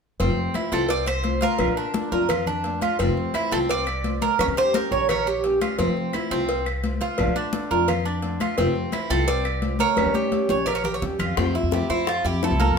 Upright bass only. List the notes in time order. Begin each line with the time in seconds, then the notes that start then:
0.20 F1
0.28 F2
0.72 C2
1.59 A#1
1.68 A#2
2.12 F2
3.00 F1
3.08 F2
3.52 C2
4.39 D#2
4.48 D#3
4.91 A#1
5.79 F2
5.87 F3
6.31 C2
7.19 A#1
7.27 A#2
7.71 F2
8.58 F1
8.66 F2
9.10 C2
9.97 D#2
10.06 D#3
10.50 A#1
11.02 D#2
11.20 F2
11.37 F2
11.63 F2
11.90 F2
12.25 F2
12.51 C2
12.68 F2